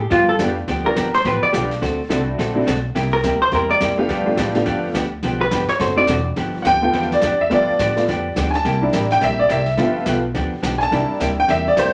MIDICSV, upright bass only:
0, 0, Header, 1, 3, 480
1, 0, Start_track
1, 0, Tempo, 284630
1, 1138, Time_signature, 4, 2, 24, 8
1, 20120, End_track
2, 0, Start_track
2, 0, Title_t, "Upright bass"
2, 0, Program_c, 0, 32
2, 179, Note_on_c, 0, 43, 93
2, 644, Note_off_c, 0, 43, 0
2, 657, Note_on_c, 0, 41, 96
2, 1123, Note_off_c, 0, 41, 0
2, 1140, Note_on_c, 0, 38, 93
2, 1606, Note_off_c, 0, 38, 0
2, 1626, Note_on_c, 0, 31, 92
2, 2089, Note_off_c, 0, 31, 0
2, 2102, Note_on_c, 0, 33, 97
2, 2371, Note_off_c, 0, 33, 0
2, 2595, Note_on_c, 0, 35, 96
2, 3054, Note_off_c, 0, 35, 0
2, 3063, Note_on_c, 0, 38, 93
2, 3528, Note_off_c, 0, 38, 0
2, 3553, Note_on_c, 0, 36, 89
2, 4013, Note_off_c, 0, 36, 0
2, 4031, Note_on_c, 0, 34, 91
2, 4492, Note_off_c, 0, 34, 0
2, 4515, Note_on_c, 0, 35, 96
2, 4971, Note_off_c, 0, 35, 0
2, 4981, Note_on_c, 0, 36, 84
2, 5447, Note_off_c, 0, 36, 0
2, 5467, Note_on_c, 0, 38, 97
2, 5926, Note_off_c, 0, 38, 0
2, 5936, Note_on_c, 0, 40, 96
2, 6405, Note_off_c, 0, 40, 0
2, 6420, Note_on_c, 0, 41, 95
2, 6886, Note_off_c, 0, 41, 0
2, 6895, Note_on_c, 0, 43, 92
2, 7363, Note_off_c, 0, 43, 0
2, 7389, Note_on_c, 0, 45, 91
2, 7851, Note_off_c, 0, 45, 0
2, 7862, Note_on_c, 0, 41, 97
2, 8322, Note_off_c, 0, 41, 0
2, 8332, Note_on_c, 0, 38, 99
2, 8801, Note_off_c, 0, 38, 0
2, 8823, Note_on_c, 0, 35, 86
2, 9280, Note_off_c, 0, 35, 0
2, 9290, Note_on_c, 0, 31, 102
2, 9564, Note_off_c, 0, 31, 0
2, 9777, Note_on_c, 0, 30, 100
2, 10236, Note_off_c, 0, 30, 0
2, 10246, Note_on_c, 0, 28, 95
2, 10717, Note_off_c, 0, 28, 0
2, 10740, Note_on_c, 0, 31, 83
2, 11204, Note_off_c, 0, 31, 0
2, 11217, Note_on_c, 0, 38, 93
2, 11683, Note_off_c, 0, 38, 0
2, 11700, Note_on_c, 0, 40, 87
2, 12164, Note_off_c, 0, 40, 0
2, 12179, Note_on_c, 0, 41, 97
2, 12643, Note_off_c, 0, 41, 0
2, 12666, Note_on_c, 0, 43, 89
2, 12932, Note_off_c, 0, 43, 0
2, 13134, Note_on_c, 0, 45, 91
2, 13601, Note_off_c, 0, 45, 0
2, 13627, Note_on_c, 0, 41, 91
2, 14087, Note_off_c, 0, 41, 0
2, 14095, Note_on_c, 0, 38, 96
2, 14561, Note_off_c, 0, 38, 0
2, 14586, Note_on_c, 0, 36, 89
2, 15047, Note_off_c, 0, 36, 0
2, 15065, Note_on_c, 0, 33, 95
2, 15526, Note_off_c, 0, 33, 0
2, 15534, Note_on_c, 0, 34, 92
2, 16000, Note_off_c, 0, 34, 0
2, 16022, Note_on_c, 0, 36, 96
2, 16484, Note_off_c, 0, 36, 0
2, 16500, Note_on_c, 0, 31, 90
2, 16963, Note_off_c, 0, 31, 0
2, 16970, Note_on_c, 0, 35, 92
2, 17438, Note_off_c, 0, 35, 0
2, 17458, Note_on_c, 0, 38, 88
2, 17726, Note_off_c, 0, 38, 0
2, 17922, Note_on_c, 0, 35, 90
2, 18393, Note_off_c, 0, 35, 0
2, 18407, Note_on_c, 0, 36, 86
2, 18680, Note_off_c, 0, 36, 0
2, 18888, Note_on_c, 0, 38, 94
2, 19352, Note_off_c, 0, 38, 0
2, 19362, Note_on_c, 0, 40, 93
2, 19833, Note_off_c, 0, 40, 0
2, 19846, Note_on_c, 0, 41, 96
2, 20120, Note_off_c, 0, 41, 0
2, 20120, End_track
3, 0, Start_track
3, 0, Title_t, "Muted upright bass strokes"
3, 2400, Note_on_c, 9, 29, 41
3, 2569, Note_off_c, 9, 29, 0
3, 9590, Note_on_c, 9, 29, 44
3, 9759, Note_off_c, 9, 29, 0
3, 12956, Note_on_c, 9, 29, 43
3, 13125, Note_off_c, 9, 29, 0
3, 17763, Note_on_c, 9, 29, 41
3, 17932, Note_off_c, 9, 29, 0
3, 20120, End_track
0, 0, End_of_file